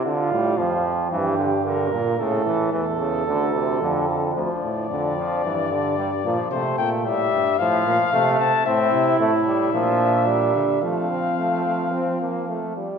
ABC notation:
X:1
M:4/4
L:1/8
Q:1/4=111
K:Dm
V:1 name="Trumpet"
z8 | z8 | d8 | c g e2 f3 a |
[K:F] e2 e6 | f6- f z |]
V:2 name="Flugelhorn"
F3 z G2 B2 | A2 A6 | z8 | z8 |
[K:F] E4 D4 | C6- C z |]
V:3 name="Trombone" clef=bass
D, G, F,2 E, D, D, B,, | ^C, E, E, C, D, =C, D, D, | F,2 D, F, E, D, G, F, | A,2 G,2 F,2 A,2 |
[K:F] C2 A, G, F,2 G,2 | A, C A, A, C B, A, G, |]
V:4 name="Euphonium" clef=bass
z A,, F,,2 G,,3 B,, | A,,2 E,,2 D,,2 F,,2 | D,, A,, F,,2 G,,3 B,, | C, B,, A,, G,, A,, B,, C, C, |
[K:F] A,, C, A,,2 B,,3 D, | F,6- F, z |]